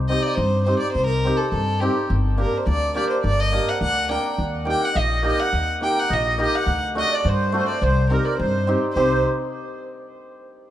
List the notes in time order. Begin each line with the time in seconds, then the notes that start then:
Already playing: C2
0.09 C4 D#4 G4 D#5
0.22 D5 D#5
0.28 D5
0.35 G2 C5
0.64 C4 D#4 G4 C5
0.79 D5
0.93 C2 C5
1.07 A#4
1.25 C4 D#4 G4
1.37 A4
1.52 G2 A4
1.81 C4 D#4 G4
2.10 G1
2.38 A#3 D4 G4 A#4
2.57 C5
2.67 D2 D5
2.95 A#3 D4 G4 D5
3.10 C5
3.24 G1 D5
3.40 D#5
3.52 A#3 D4 G4
3.69 F#5
3.81 D2 F#5
4.09 A#3 D4 A#4 G5
4.38 D#2
4.65 A#3 D#4 G4 G5
4.71 G5
4.80 F#5
4.85 F#5
4.94 A#1 D#5
5.22 A#3 D#4 G4 D#5
5.28 D#5
5.39 F#5
5.53 D#2
5.80 A#3 D#4 G4 G5
6.00 F#5
6.09 A#1 D#5
6.14 D#5
6.38 A#3 D#4 G4 D#5
6.42 D#5
6.55 F#5
6.66 D2
6.95 A3 D4 F#4 D#5
7.12 D5
7.25 G2 C5
7.29 C5
7.52 A3 D4 F#4
7.57 C5
7.69 D5
7.81 C2 C5
8.10 C4 D#4 G4 A#4
8.25 D5
8.38 G2 C5
8.67 C4 D#4 G4
8.93 C2 G4 C5
8.97 C4 D#4 C5